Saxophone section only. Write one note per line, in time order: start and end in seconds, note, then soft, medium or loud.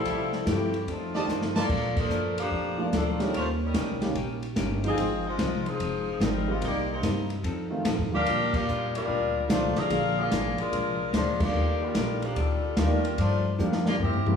0.00 0.43 G3 medium
0.00 0.43 C4 medium
0.00 0.43 E4 medium
0.00 0.43 A4 loud
0.48 0.85 E3 medium
0.48 0.85 A3 medium
0.48 0.85 C4 medium
0.48 0.85 G4 medium
0.90 1.57 A3 medium
0.90 1.57 C4 medium
0.90 1.57 D#4 medium
0.90 1.57 F4 medium
1.58 1.95 A#3 medium
1.58 1.95 F4 medium
1.58 1.95 A4 medium
1.58 1.95 D5 loud
1.98 2.36 F3 medium
1.98 2.36 D4 medium
1.98 2.35 A4 medium
1.98 2.35 A#4 medium
2.39 2.89 F3 medium
2.39 2.90 A#3 medium
2.39 2.89 D4 medium
2.39 2.89 G4 medium
2.95 3.19 F3 medium
2.95 3.19 A#3 medium
2.95 3.19 D4 medium
2.95 3.19 A4 medium
3.21 3.34 F3 medium
3.21 3.34 A3 medium
3.21 3.34 D4 medium
3.21 3.34 A#4 medium
3.36 3.48 A3 medium
3.36 3.48 C#4 medium
3.36 3.47 F4 medium
3.36 3.48 C5 medium
3.64 4.00 G3 medium
3.64 4.00 C#4 medium
3.64 4.00 D#4 medium
3.64 4.00 A#4 medium
4.86 5.23 C4 medium
4.86 5.23 F4 medium
4.86 5.23 G#4 loud
4.86 5.23 D#5 loud
5.26 5.66 G#3 medium
5.26 5.66 D#4 medium
5.26 5.67 F4 medium
5.26 5.67 C5 medium
5.67 6.21 F3 medium
5.67 6.21 C4 medium
5.67 6.21 D#4 medium
5.67 6.21 G#4 loud
6.23 6.49 G3 medium
6.23 6.49 C4 medium
6.23 6.49 D#4 medium
6.23 6.49 A#4 medium
6.50 6.63 G#3 medium
6.50 6.63 D#4 medium
6.50 6.63 F4 medium
6.50 6.63 C5 medium
6.64 6.89 A#3 medium
6.64 6.88 D#4 medium
6.64 6.88 G4 medium
6.64 6.89 D5 medium
6.92 7.29 A#3 medium
6.92 7.29 D#4 medium
6.92 7.29 G4 medium
6.92 7.29 C5 medium
8.14 8.51 D4 loud
8.14 8.52 G4 loud
8.14 8.51 A#4 medium
8.14 8.51 F5 loud
8.54 8.92 A#3 medium
8.54 8.92 F4 medium
8.54 8.92 G4 medium
8.54 8.92 D5 loud
8.95 9.46 G3 medium
8.95 9.46 D4 medium
8.95 9.46 F4 medium
8.95 9.46 A#4 medium
9.50 9.75 A3 medium
9.50 9.75 D4 medium
9.50 9.75 F4 medium
9.50 9.75 C5 loud
9.78 10.18 D4 medium
9.78 10.18 G#4 medium
9.78 10.18 A#4 medium
9.78 10.18 F5 loud
10.19 10.59 A#3 medium
10.19 10.58 F4 medium
10.19 10.59 G#4 medium
10.19 10.59 D5 medium
10.59 11.10 G#3 medium
10.59 11.10 D4 medium
10.59 11.10 F4 medium
10.59 11.10 A#4 loud
11.14 11.39 G#3 medium
11.14 11.39 D4 medium
11.14 11.39 F4 medium
11.14 11.39 C5 loud
11.42 11.82 A#3 medium
11.42 11.81 F4 medium
11.42 11.82 G4 medium
11.42 11.82 D5 loud
11.82 12.22 G3 medium
11.82 12.22 D4 medium
11.82 12.23 F4 medium
11.82 12.22 A#4 medium
12.23 12.37 F3 medium
12.23 12.37 A#3 medium
12.23 12.37 D4 medium
12.23 12.37 G4 medium
12.38 12.77 G3 medium
12.38 12.77 D4 medium
12.38 12.77 F4 medium
12.38 12.78 A4 medium
12.78 13.16 G3 medium
12.78 13.16 D4 medium
12.78 13.16 F4 medium
12.78 13.16 A#4 medium
13.19 13.53 A3 medium
13.19 13.53 D4 medium
13.19 13.53 F4 medium
13.19 13.53 C5 medium
13.88 13.94 A#3 medium
13.88 13.94 F4 medium
13.88 13.94 G4 medium
13.88 13.94 D5 medium
14.02 14.36 C4 medium
14.02 14.36 G4 medium
14.02 14.36 A#4 medium
14.02 14.36 E5 medium